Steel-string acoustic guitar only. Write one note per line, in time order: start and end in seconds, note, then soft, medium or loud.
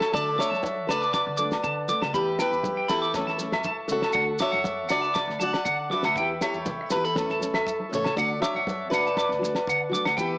0.00 0.12 A4 medium
0.00 0.14 C#5 medium
0.14 0.37 A4 medium
0.14 0.40 D5 loud
0.40 0.86 C#5 medium
0.40 0.90 E5 medium
0.89 2.10 B4 medium
0.89 2.19 D5 loud
2.16 2.38 G4 medium
2.16 2.38 B4 medium
2.41 2.87 G4 medium
2.41 2.87 B4 medium
2.91 3.86 E4 medium
2.91 3.86 A4 loud
3.92 4.38 F#4 medium
3.92 4.38 A4 medium
4.42 4.88 C#5 medium
4.42 4.91 E5 loud
4.91 5.37 B4 medium
4.91 5.42 D5 loud
5.43 5.88 D5 medium
5.43 5.88 F#5 loud
5.92 6.38 B4 medium
5.92 6.38 E5 loud
6.42 6.88 A4 medium
6.42 6.91 C#5 loud
6.92 7.04 G4 medium
6.92 7.05 B4 medium
7.05 7.76 E4 medium
7.05 7.80 A4 medium
7.95 8.15 A4 medium
7.95 8.16 C#5 medium
8.17 8.40 A4 medium
8.17 8.40 D5 medium
8.42 8.89 C#5 medium
8.42 8.90 E5 loud
8.90 10.13 B4 medium
8.90 10.13 D5 loud
10.17 10.38 G4 medium
10.17 10.38 B4 loud